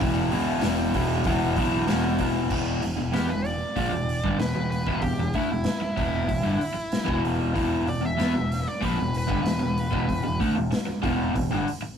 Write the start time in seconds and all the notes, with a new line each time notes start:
0.00 E1 E2 B2 E3, kick, open hi-hat
0.32 C#2 E2 B2 E3, open hi-hat
0.61 E1 E2 B2, snare, open hi-hat
0.65 E3
0.94 E1 E2 B2 E3, kick, open hi-hat
1.24 E1 E2 B2 E3, kick, open hi-hat
1.56 B1 E2 B2 E3, kick, open hi-hat
1.87 E1 E2 B2 E3, snare, open hi-hat
2.18 E1 E2 B2 E3, kick, open hi-hat
2.50 E1 E2 B2 E3, kick, crash
2.81 E1 E2 B2, open hi-hat
2.97 E1 E2 B2
3.12 E2 E3 B3 G4, snare, open hi-hat
3.29 E1 E2 B2 B4
3.45 D5, open hi-hat
3.76 A#1 A#2 F3, kick, open hi-hat
3.92 E1 E2 B2
4.09 open hi-hat
4.23 G1 G2 D3, kick
4.39 E1 E2 B2 B4, snare, open hi-hat
4.55 E1 E2 B2
4.71 B4, open hi-hat
4.87 E1 E2 B2, kick
5.02 E1 E2 B2 G4, kick, open hi-hat
5.17 E1 E2 B2
5.33 D2 D3 A3 E4, kick, open hi-hat
5.50 E1 E2 B2
5.64 muted overdriven electric guitar stroke, muted picked electric bass stroke, snare, open hi-hat
5.82 muted overdriven electric guitar stroke, muted picked electric bass stroke
5.97 E1 E2 B2 E3, kick, open hi-hat
6.28 E1 E2 B2, kick, open hi-hat
6.43 G1 G2 D3
6.59 muted overdriven electric guitar stroke, muted picked electric bass stroke, open hi-hat
6.74 muted overdriven electric guitar stroke, muted picked electric bass stroke
6.92 snare, open hi-hat
7.05 E2 B2 E3, kick
7.09 E1
7.25 open hi-hat
7.54 E1 E2 B2 E3, kick, open hi-hat
7.86 E1 E2 B2 D5, open hi-hat
8.01 E1 E2 B2
8.05 E5
8.17 E2 E3 B3, snare, open hi-hat
8.34 E1 E2 B2
8.52 snare, open hi-hat
8.68 D5
8.81 A#1 A#2 F3 B4, kick, open hi-hat
8.97 E1 E2 B2
9.14 B4, open hi-hat
9.27 G1 G2 D3, kick
9.43 E1 E2 B2, snare, open hi-hat
9.59 E1 E2 B2
9.77 open hi-hat
9.91 E1 E2 B2, kick
10.07 E1 E2 B2, kick, open hi-hat
10.23 E1 E2 B2
10.40 D2 D3 A3, kick, open hi-hat
10.55 E1 E2 B2
10.71 muted overdriven electric guitar stroke, muted picked electric bass stroke, snare, open hi-hat
10.87 muted overdriven electric guitar stroke, muted picked electric bass stroke
11.02 E1 E2 B2 E3, kick, open hi-hat
11.35 E1 E2 B2, kick, open hi-hat
11.51 G1 G2 D3
11.67 muted picked electric bass stroke, muted overdriven electric guitar stroke, open hi-hat
11.82 muted overdriven electric guitar stroke, muted picked electric bass stroke